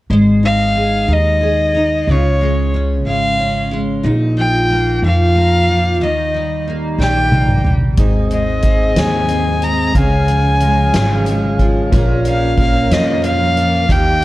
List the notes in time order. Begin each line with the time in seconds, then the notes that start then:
0.10 G#1 G#3 C5
0.43 D#4 F5
0.75 G#4
1.08 D#2 D#4
1.13 D#5
1.41 G#4
1.74 D#4
2.07 C#2 C#3 F4
2.11 C#5
2.41 G#3
2.74 C#4
3.05 G#1 G#3 F5
3.39 C#4
3.71 G#3
4.03 A#1 A#2 D#4
4.37 F3 G5
4.71 A#3
5.02 F2 F3 F5
5.35 A#3
5.69 F3
6.00 D#2 D#3 D#4 D#5
6.34 G3
6.67 A#3
6.98 A#1 G3 G5, snare
7.32 A#3, high tom
7.48 mid tom
7.64 G3, mid tom
7.97 G#1 G#2 C4 D#4 G#4 D#5, kick, closed hi-hat
8.30 G#3 D#5, closed hi-hat
8.62 C4, kick, closed hi-hat
8.96 D#2 G#3 G#5, snare, closed hi-hat
9.29 C4, closed hi-hat
9.62 G#3 A#5, closed hi-hat
9.95 C#2 C#3 C#4 G#4 F5 G#5, kick, closed hi-hat
10.28 F3, closed hi-hat
10.61 G#3, closed hi-hat
10.94 G#1 F3, snare, closed hi-hat
11.26 G#3, closed hi-hat
11.59 F3, kick, closed hi-hat
11.91 A#1 A#2 C#4 A#4, kick, closed hi-hat
12.25 F3 F5, closed hi-hat
12.57 A#3, kick, closed hi-hat
12.91 F2 F3 D#5, snare, closed hi-hat
13.22 A#3 F5, closed hi-hat
13.57 F3, closed hi-hat
13.89 D#2 D#3 D#4 G4 G5, kick, closed hi-hat